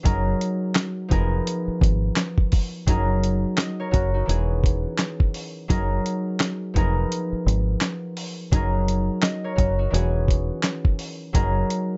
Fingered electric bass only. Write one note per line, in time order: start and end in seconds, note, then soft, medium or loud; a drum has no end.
0.05 0.33 F#1 loud
1.11 1.39 F1 medium
1.68 muted fingered electric bass stroke soft
1.81 2.10 G#1 loud
2.87 3.44 F#1 loud
3.94 4.22 F#1 medium
4.29 4.85 E1 loud
5.70 5.98 F#1 loud
6.76 7.04 F1 medium
7.33 muted fingered electric bass stroke soft
7.46 7.75 G#1 medium
8.52 9.09 F#1 loud
9.58 9.86 F#1 medium
9.93 10.50 E1 loud
11.35 11.63 F#1 loud